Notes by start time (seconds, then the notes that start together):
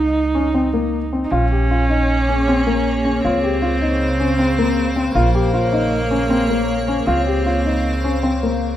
Already playing: C#2 D#4
0.35 C#4
0.55 C4
0.74 A#3
1.13 C4
1.24 D#4
1.31 A#1 A#3 C#4 F4 G#4 C#5
1.51 G4
1.71 F4
1.90 D#4
2.28 C#4
2.48 C4
2.67 A#3
3.05 C#4
3.24 C#2 C#3 C4 F4 C5 F5
3.44 G4
3.62 F4
3.81 D#4
4.20 C#4
4.39 C4
4.58 A#3
4.96 C4
5.15 A#1 A#3 F4 G#4 C#5
5.35 G4
5.54 F4
5.73 D#4
6.11 C#4
6.30 C4
6.50 A#3
6.88 C#4
7.06 C#2 C#3 C4 F4 C5 F5
7.27 G4
7.46 F4
7.66 D#4
8.04 C#4
8.23 C4
8.43 A#3